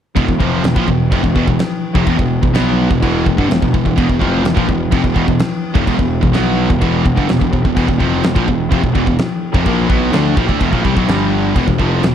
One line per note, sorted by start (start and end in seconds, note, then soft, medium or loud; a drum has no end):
0.16 0.28 E1 loud
0.16 0.26 E2 loud
0.16 0.27 B2 loud
0.16 11.52 E3 medium
0.16 11.04 E4 medium
0.16 5.83 B4 medium
0.16 11.52 G5 medium
0.16 kick loud
0.16 crash medium
0.28 0.40 E1 medium
0.28 0.39 E2 medium
0.28 0.39 B2 medium
0.28 kick medium
0.39 0.63 F1 medium
0.39 0.63 F2 loud
0.39 0.63 C3 loud
0.39 0.63 F3 loud
0.39 kick medium
0.63 0.75 E1 medium
0.63 0.76 E2 medium
0.63 0.75 B2 medium
0.63 snare loud
0.63 crash medium
0.76 0.87 A#1 loud
0.76 0.87 A#2 loud
0.76 0.87 F3 loud
0.76 kick loud
0.88 1.10 E1 medium
0.88 1.07 E2 medium
0.88 1.07 B2 medium
0.88 kick medium
1.12 1.23 F1 medium
1.12 1.23 F2 loud
1.12 1.23 C3 loud
1.12 kick loud
1.12 crash medium
1.23 1.35 E1 medium
1.23 1.35 E2 medium
1.23 1.35 B2 medium
1.23 kick medium
1.36 1.47 E1 medium
1.36 1.46 E2 medium
1.36 1.46 B2 loud
1.36 kick loud
1.47 1.58 E1 medium
1.47 1.59 E2 medium
1.47 1.59 B2 medium
1.47 kick medium
1.59 snare loud
1.59 crash medium
1.94 2.06 F1 medium
1.94 2.06 F2 medium
1.94 2.06 C3 loud
1.94 kick loud
2.06 2.18 E1 loud
2.06 2.18 E2 loud
2.06 2.18 B2 loud
2.06 kick loud
2.06 crash medium
2.19 2.41 E1 medium
2.19 2.38 E2 medium
2.19 2.38 B2 medium
2.19 kick medium
2.42 2.54 E1 medium
2.42 2.54 E2 medium
2.42 2.53 B2 medium
2.42 kick medium
2.54 2.88 B1 loud
2.54 2.89 B2 loud
2.54 2.89 F#3 loud
2.54 2.89 B3 loud
2.54 snare loud
2.54 crash medium
2.90 3.02 E1 medium
2.90 3.00 E2 medium
2.90 3.00 B2 medium
2.90 kick medium
3.02 3.25 E1 medium
3.02 3.24 E2 loud
3.02 3.24 B2 loud
3.02 3.25 E3 loud
3.02 kick loud
3.02 crash medium
3.25 3.37 E1 medium
3.25 3.37 E2 medium
3.25 3.37 B2 medium
3.25 kick medium
3.37 3.49 G1 loud
3.37 3.49 G2 medium
3.37 3.49 D3 loud
3.37 kick medium
3.50 3.61 E1 medium
3.50 3.60 E2 medium
3.50 3.61 B2 medium
3.50 snare loud
3.50 crash medium
3.61 3.73 E1 medium
3.61 3.73 E2 medium
3.61 3.73 B2 medium
3.61 kick loud
3.74 3.85 E1 medium
3.74 3.84 E2 medium
3.74 3.85 B2 medium
3.74 kick medium
3.85 3.97 E1 medium
3.85 3.96 E2 medium
3.85 3.97 B2 medium
3.85 kick medium
3.97 4.09 E1 loud
3.97 4.08 E2 loud
3.97 4.08 B2 loud
3.97 kick loud
3.97 crash medium
4.09 4.20 E1 medium
4.09 4.20 E2 medium
4.09 4.21 B2 medium
4.09 kick medium
4.20 4.43 F1 loud
4.20 4.44 F2 loud
4.20 4.44 C3 medium
4.20 4.44 F3 loud
4.20 kick medium
4.45 4.56 E1 medium
4.45 4.57 E2 medium
4.45 4.57 B2 medium
4.45 snare loud
4.45 crash medium
4.57 4.68 A#1 medium
4.57 4.68 A#2 medium
4.57 4.68 F3 loud
4.57 kick loud
4.69 4.91 E1 medium
4.69 4.88 E2 medium
4.69 4.88 B2 medium
4.69 kick medium
4.92 5.03 F1 loud
4.92 5.03 F2 medium
4.92 5.04 C3 loud
4.92 kick loud
4.92 crash medium
5.04 5.15 E1 medium
5.04 5.15 E2 medium
5.04 5.15 B2 medium
5.04 kick medium
5.16 5.27 E1 loud
5.16 5.26 E2 loud
5.16 5.27 B2 loud
5.16 kick medium
5.27 5.39 E1 medium
5.27 5.39 E2 medium
5.27 5.40 B2 medium
5.27 kick medium
5.39 snare loud
5.39 crash medium
5.75 5.86 F1 loud
5.75 5.86 F2 medium
5.75 5.86 C3 loud
5.75 kick loud
5.85 5.98 E1 loud
5.85 5.98 E2 loud
5.85 5.98 B2 loud
5.85 11.03 A4 medium
5.85 kick loud
5.85 crash medium
5.99 6.21 E1 medium
5.99 6.18 E2 medium
5.99 6.18 B2 medium
5.99 kick medium
6.23 6.34 E1 medium
6.23 6.34 E2 medium
6.23 6.33 B2 medium
6.23 kick medium
6.34 6.68 B1 medium
6.34 6.69 B2 loud
6.34 6.69 F#3 loud
6.34 6.70 B3 loud
6.34 snare loud
6.34 crash medium
6.70 6.81 E1 medium
6.70 6.80 E2 medium
6.70 6.80 B2 medium
6.70 kick loud
6.81 7.04 E1 medium
6.81 7.03 E2 loud
6.81 7.03 B2 loud
6.81 7.05 E3 loud
6.81 kick loud
6.81 crash medium
7.04 7.17 E1 medium
7.04 7.15 E2 medium
7.04 7.15 B2 medium
7.04 kick loud
7.15 7.29 G1 medium
7.15 7.28 G2 medium
7.15 7.28 D3 loud
7.15 kick loud
7.28 7.40 E1 medium
7.28 7.39 E2 medium
7.28 7.39 B2 medium
7.28 snare loud
7.28 crash medium
7.40 7.52 E1 medium
7.40 7.52 E2 medium
7.40 7.52 B2 medium
7.40 kick medium
7.53 7.64 E1 medium
7.53 7.63 E2 medium
7.53 7.64 B2 medium
7.53 kick medium
7.64 7.76 E1 medium
7.64 7.75 E2 medium
7.64 7.75 B2 medium
7.64 kick medium
7.76 7.88 E1 loud
7.76 7.87 E2 loud
7.76 7.88 B2 loud
7.76 kick loud
7.76 crash medium
7.88 8.00 E1 medium
7.88 8.00 E2 medium
7.88 8.01 B2 medium
7.88 kick medium
8.00 8.22 F1 loud
8.00 8.24 F2 loud
8.00 8.24 C3 loud
8.00 8.24 F3 loud
8.00 kick medium
8.23 8.35 E1 medium
8.23 8.36 E2 medium
8.23 8.36 B2 medium
8.23 snare loud
8.23 crash medium
8.36 8.47 A#1 medium
8.36 8.47 A#2 medium
8.36 8.47 F3 loud
8.36 kick loud
8.48 8.70 E1 medium
8.48 8.67 E2 medium
8.48 8.67 B2 medium
8.48 kick medium
8.72 8.83 F1 medium
8.72 8.83 F2 medium
8.72 8.83 C3 loud
8.72 kick loud
8.72 crash medium
8.83 8.94 E1 medium
8.83 8.95 E2 medium
8.83 8.95 B2 medium
8.83 kick medium
8.95 9.06 E1 loud
8.95 9.07 E2 medium
8.95 9.07 B2 loud
8.95 kick loud
9.07 9.18 E1 medium
9.07 9.19 E2 medium
9.07 9.19 B2 medium
9.07 kick medium
9.18 snare loud
9.18 crash medium
9.54 9.65 F1 medium
9.54 9.65 F2 medium
9.54 9.65 C3 loud
9.54 kick loud
9.66 9.88 A#1 loud
9.66 9.88 A#2 medium
9.66 9.88 F3 loud
9.66 9.89 A#3 loud
9.66 kick medium
9.66 crash medium
9.89 10.12 B1 medium
9.89 10.12 B2 medium
9.89 10.12 F#3 loud
9.89 10.13 B3 loud
9.89 kick loud
10.12 10.35 D2 loud
10.12 10.36 D3 loud
10.12 10.37 A3 loud
10.12 10.36 D4 loud
10.12 snare loud
10.12 crash medium
10.37 10.48 A#1 medium
10.37 10.48 A#2 medium
10.37 10.48 F3 medium
10.37 kick loud
10.49 10.60 D2 loud
10.49 10.60 D3 medium
10.49 10.60 A3 loud
10.49 kick medium
10.60 10.72 E1 medium
10.60 10.72 E2 loud
10.60 10.72 B2 loud
10.60 kick loud
10.60 crash medium
10.73 10.84 A#1 loud
10.73 10.84 A#2 medium
10.73 10.84 F3 loud
10.73 kick medium
10.85 10.96 C2 loud
10.85 10.96 C3 medium
10.85 10.96 G3 loud
10.85 kick medium
10.97 11.07 B1 loud
10.97 11.08 B2 medium
10.97 11.08 F#3 loud
10.97 kick medium
11.08 11.52 G1 loud
11.08 11.55 G2 loud
11.08 11.55 D3 loud
11.08 11.55 G3 loud
11.08 11.56 D4 medium
11.08 11.56 D5 medium
11.08 snare loud
11.08 crash medium
11.55 11.67 E1 loud
11.55 11.66 E2 loud
11.55 11.67 B2 loud
11.55 12.15 G3 medium
11.55 12.15 E4 medium
11.55 12.15 B4 medium
11.55 12.15 G5 medium
11.55 kick loud
11.55 crash medium
11.68 11.79 E1 medium
11.68 11.79 E2 medium
11.68 11.80 B2 medium
11.68 kick medium
11.79 12.02 F1 loud
11.79 12.03 F2 medium
11.79 12.03 C3 loud
11.79 12.03 F3 loud
11.79 kick medium
12.03 12.14 E1 medium
12.03 12.15 E2 medium
12.03 12.15 B2 medium
12.03 snare loud
12.03 crash medium